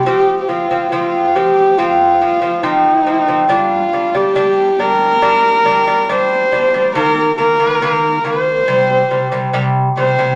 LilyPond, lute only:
\new Staff \with { instrumentName = "Lute" } { \clef bass \time 4/4 \key g \phrygian \tempo 4 = 70 <f c'>8 <f c'>16 <f c'>16 <f c'>8 <f c'>8 <f c'>8 <f c'>16 <f c'>16 <f c'>8 <f c'>16 <f c'>16 | <g d'>8 <g d'>16 <g d'>16 <g d'>8 <g d'>8 <g d'>8 <g d'>16 <g d'>16 <g d'>8 <g d'>16 <g d'>16 | <ees bes>8 <ees bes>16 <ees bes>16 <ees bes>8 <ees bes>8 <c g>8 <c g>16 <c g>16 <c g>8 <c g>16 <c g>16 | }